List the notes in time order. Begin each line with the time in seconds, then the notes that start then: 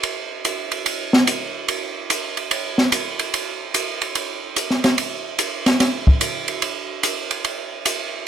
0.03 ride
0.45 hi-hat pedal, ride
0.72 ride
0.86 ride
1.13 snare
1.27 hi-hat pedal, ride
1.68 ride
2.10 hi-hat pedal, ride
2.37 ride
2.51 ride
2.78 snare
2.92 hi-hat pedal, ride
3.19 ride
3.34 ride
3.74 hi-hat pedal, ride
4.01 ride
4.15 ride
4.56 hi-hat pedal, ride
4.70 snare
4.84 snare, ride
4.98 ride
5.39 hi-hat pedal, ride
5.66 snare, ride
5.80 snare, ride
6.07 kick
6.21 hi-hat pedal, ride
6.48 ride
6.62 ride
7.03 hi-hat pedal, ride
7.31 ride
7.44 ride
7.85 hi-hat pedal, ride